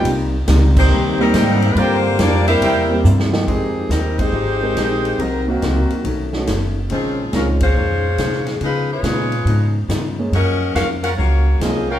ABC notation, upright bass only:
X:1
M:4/4
L:1/8
Q:"Swing" 1/4=140
K:Fm
V:1 name="Upright bass" clef=bass
C,,2 D,,2 E,,2 A,,2 | G,,2 F,,2 =E,,2 G,,2 | F,,2 E,,2 A,,,2 B,,,2 | C,,2 D,, z =B,,,2 ^F,,,2 |
B,,,2 D,,2 F,,2 C,2 | D,2 B,,2 A,,2 G,,2 | _G,,2 F,,2 D,,2 C,,2 |]